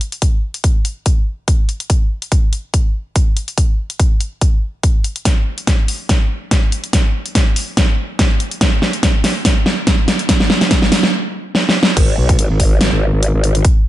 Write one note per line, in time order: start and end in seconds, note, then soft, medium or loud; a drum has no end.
0.01 closed hi-hat medium
0.12 closed hi-hat medium
0.22 kick medium
0.22 closed hi-hat medium
0.54 closed hi-hat medium
0.64 kick medium
0.64 closed hi-hat medium
0.85 closed hi-hat medium
1.06 kick medium
1.06 closed hi-hat medium
1.48 kick medium
1.48 closed hi-hat medium
1.69 closed hi-hat medium
1.80 closed hi-hat medium
1.90 kick loud
1.90 closed hi-hat medium
2.22 closed hi-hat soft
2.32 kick medium
2.32 closed hi-hat medium
2.53 closed hi-hat medium
2.74 kick medium
2.74 closed hi-hat medium
3.16 kick medium
3.16 closed hi-hat medium
3.37 closed hi-hat medium
3.48 closed hi-hat medium
3.58 kick medium
3.58 closed hi-hat medium
3.90 closed hi-hat soft
4.00 kick medium
4.00 closed hi-hat medium
4.21 closed hi-hat medium
4.41 kick loud
4.41 closed hi-hat medium
4.83 kick medium
4.83 closed hi-hat medium
5.04 closed hi-hat soft
5.16 closed hi-hat medium
5.25 kick loud
5.25 snare soft
5.25 closed hi-hat medium
5.58 closed hi-hat soft
5.67 kick medium
5.67 snare soft
5.67 closed hi-hat medium
5.88 open hi-hat medium
6.09 kick loud
6.09 snare medium
6.09 closed hi-hat medium
6.51 kick medium
6.51 snare medium
6.51 closed hi-hat medium
6.72 closed hi-hat soft
6.84 closed hi-hat soft
6.93 kick loud
6.93 snare medium
6.93 closed hi-hat medium
7.26 closed hi-hat soft
7.35 kick medium
7.35 snare medium
7.35 closed hi-hat medium
7.56 open hi-hat medium
7.77 kick loud
7.77 snare medium
7.77 closed hi-hat medium
8.19 kick loud
8.19 snare medium
8.19 closed hi-hat medium
8.40 closed hi-hat medium
8.51 closed hi-hat soft
8.61 kick loud
8.61 snare medium
8.61 closed hi-hat medium
8.82 snare medium
8.93 closed hi-hat soft
9.03 kick medium
9.03 snare medium
9.03 closed hi-hat medium
9.24 snare medium
9.24 open hi-hat medium
9.45 kick medium
9.45 snare medium
9.45 closed hi-hat medium
9.66 snare medium
9.87 kick loud
9.87 snare medium
9.87 closed hi-hat medium
10.08 snare medium
10.08 closed hi-hat medium
10.19 closed hi-hat medium
10.29 kick loud
10.29 snare medium
10.29 closed hi-hat medium
10.40 snare medium
10.50 snare medium
10.61 snare medium
10.61 closed hi-hat medium
10.71 kick medium
10.71 snare medium
10.71 closed hi-hat medium
10.82 snare medium
10.92 snare loud
10.92 open hi-hat loud
11.03 snare medium
11.55 snare medium
11.69 snare medium
11.83 snare loud
11.97 12.16 G#1 loud
11.97 kick loud
11.97 closed hi-hat medium
11.97 crash loud
12.18 12.37 B1 medium
12.29 kick loud
12.29 closed hi-hat medium
12.39 12.48 G#1 loud
12.39 closed hi-hat medium
12.50 12.90 G#1 loud
12.60 kick medium
12.60 open hi-hat loud
12.81 snare loud
12.81 closed hi-hat medium
12.92 13.11 G#1 loud
13.13 13.32 G#1 loud
13.23 closed hi-hat medium
13.34 13.63 G#1 medium
13.44 closed hi-hat medium
13.55 closed hi-hat medium
13.65 kick loud
13.65 closed hi-hat medium